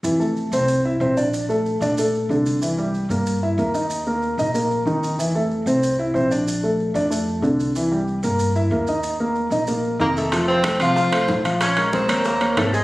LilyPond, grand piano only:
\new Staff \with { instrumentName = "Grand piano" } { \time 4/4 \key f \major \tempo 4 = 187 <e e'>8 <a a'>4 <c' c''>4 <e' e''>8 <c' c''>8 <d' d''>8~ | <d' d''>8 <a a'>4 <d' d''>8 <a a'>4 <d d'>4 | <e e'>8 <g g'>4 <bes bes'>4 <e' e''>8 <bes bes'>8 <ees' ees''>8~ | <ees' ees''>8 <bes bes'>4 <ees' ees''>8 <bes bes'>4 <ees ees'>4 |
<e e'>8 <a a'>4 <c' c''>4 <e' e''>8 <c' c''>8 <d' d''>8~ | <d' d''>8 <a a'>4 <d' d''>8 <a a'>4 <d d'>4 | <e e'>8 <g g'>4 <bes bes'>4 <e' e''>8 <bes bes'>8 <ees' ees''>8~ | <ees' ees''>8 <bes bes'>4 <ees' ees''>8 <bes bes'>4 <ees ees'>4 |
<f f' f''>4 <a a' c''>8 <f f' f''>4 <a a' c''>4 <f f' f''>8~ | <f f' f''>8 <aes aes' bes'>4 <bes bes' des''>4 <bes bes' des''>4 <aes aes' aes''>8 | }